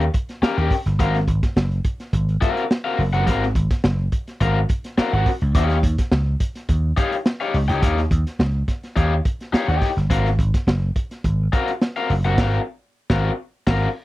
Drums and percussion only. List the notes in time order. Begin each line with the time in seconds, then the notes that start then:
0.01 closed hi-hat
0.14 kick, closed hi-hat
0.29 snare, closed hi-hat
0.43 snare
0.58 closed hi-hat
0.71 kick, open hi-hat
0.86 snare, closed hi-hat
0.99 kick, closed hi-hat
1.14 snare, closed hi-hat
1.28 kick, closed hi-hat
1.43 kick, snare, closed hi-hat
1.57 snare
1.72 closed hi-hat
1.84 kick, closed hi-hat
2.00 snare, closed hi-hat
2.13 kick, closed hi-hat
2.29 closed hi-hat
2.42 kick, closed hi-hat
2.57 closed hi-hat
2.71 snare
2.99 open hi-hat
3.14 closed hi-hat
3.27 kick, closed hi-hat
3.43 snare
3.55 kick, closed hi-hat
3.70 kick, snare, closed hi-hat
3.84 snare
4.12 kick, closed hi-hat
4.27 snare, closed hi-hat
4.40 kick, closed hi-hat
4.69 kick, closed hi-hat
4.84 snare, closed hi-hat
4.98 snare
5.13 closed hi-hat
5.26 kick, open hi-hat
5.41 closed hi-hat
5.55 kick, closed hi-hat
5.70 snare, closed hi-hat
5.83 kick, closed hi-hat
5.98 kick, snare, closed hi-hat
6.12 snare
6.40 kick, closed hi-hat
6.55 snare, closed hi-hat
6.69 kick, closed hi-hat
6.97 kick, closed hi-hat
7.12 closed hi-hat
7.26 snare
7.41 closed hi-hat
7.54 open hi-hat
7.69 closed hi-hat
7.83 kick, closed hi-hat
7.98 snare, closed hi-hat
8.11 kick, closed hi-hat
8.27 snare, closed hi-hat
8.40 snare
8.68 kick, snare, closed hi-hat
8.83 snare, closed hi-hat
8.96 kick, closed hi-hat
9.25 kick, closed hi-hat
9.40 snare, closed hi-hat
9.54 snare
9.69 closed hi-hat
9.82 kick, open hi-hat
9.97 snare, closed hi-hat
10.10 kick, closed hi-hat
10.26 snare, closed hi-hat
10.39 kick, closed hi-hat
10.54 kick, snare, closed hi-hat
10.68 snare
10.96 kick, closed hi-hat
11.11 snare, closed hi-hat
11.24 kick, closed hi-hat
11.53 kick, closed hi-hat
11.68 closed hi-hat
11.81 snare
11.96 closed hi-hat
12.10 open hi-hat
12.24 closed hi-hat
12.38 kick, snare, crash
13.10 kick, snare
13.67 kick, snare, crash